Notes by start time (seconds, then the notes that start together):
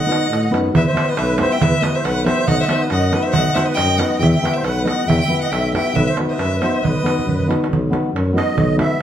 Already playing: D#5 F#5
0.06 B3 D#4 F#4 B4
0.12 darbuka tek
0.30 A2, darbuka tek
0.45 darbuka tek
0.50 F#2 B3 D#4 F#4 B4, darbuka tek
0.66 darbuka tek
0.73 E2 B4 E5, darbuka dum
0.87 C5 E5
0.93 B3 E4 G4 B4
0.97 darbuka tek
1.08 B4 D#5, darbuka tek
1.17 B1 B4 E5, darbuka tek
1.38 B3 E4 G4 B4 C5 E5, darbuka tek
1.51 E5 G5, darbuka tek
1.61 E2 B4 E5, darbuka dum
1.82 B3 E4 G4 B4 D#5, darbuka tek
1.95 C5 E5, darbuka tek
2.04 B1 B4 F#5, darbuka tek
2.25 B3 E4 G4 B4 C5 E5, darbuka tek
2.39 darbuka tek
2.47 B1 D#5 F#5, darbuka dum
2.60 C5 D#5 E5 F#5
2.68 B3 D#4 F#4 B4 C5 E5, darbuka tek
2.81 B4 D#5, darbuka tek
2.90 F#2 D#5 F#5, darbuka tek
3.12 B3 D#4 F#4 B4 D#5, darbuka tek
3.23 C5 E5, darbuka tek
3.32 B1 D#5 F#5, darbuka dum
3.46 darbuka tek
3.54 B3 D#4 F#4 B4 C5 E5, darbuka tek
3.65 B4 D#5
3.69 darbuka tek
3.74 F#2 D#5 G5, darbuka tek
3.89 darbuka tek
3.98 B3 D#4 F#4 B4 D#5 F#5, darbuka tek
4.12 darbuka tek
4.19 E2 E5 G5, darbuka dum
4.31 G5
4.35 E5
4.41 B3 E4 G4 B4
4.45 darbuka tek
4.53 C5 E5, darbuka tek
4.63 B1 B4 F#5, darbuka tek
4.84 B3 E4 G4 B4 D#5 F#5, darbuka tek
5.00 darbuka tek
5.06 E2 E5 G5, darbuka dum
5.21 E5 G5
5.28 B3 E4 G4 B4
5.41 D#5 F#5, darbuka tek
5.50 B1 E5 G5, darbuka tek
5.73 B3 E4 G4 B4 E5 G5, darbuka tek
5.86 darbuka tek
5.94 B1 B4 E5, darbuka dum
6.07 C5 E5
6.17 B3 D#4 F#4 B4, darbuka tek
6.29 B4 C5 D#5 E5, darbuka tek
6.33 B4 D#5
6.38 F#2 B4 E5, darbuka tek
6.61 B3 D#4 F#4 B4 C5 E5, darbuka tek
6.75 darbuka tek
6.82 B1 B4 D#5, darbuka dum
6.97 darbuka tek
7.03 B3 D#4 F#4 B4, darbuka tek
7.19 darbuka dum
7.26 F#2, darbuka dum
7.40 darbuka dum
7.47 B3 D#4 F#4 B4, darbuka tek
7.64 darbuka tek
7.70 B1, darbuka dum
7.90 B3 D#4 F#4 B4, darbuka tek
8.14 F#2, darbuka tek
8.33 B3 D#4 F#4 B4 D#5
8.38 darbuka tek
8.48 darbuka tek
8.56 B1, darbuka dum
8.77 B3 D#4 F#4 B4 E5, darbuka tek
8.91 darbuka tek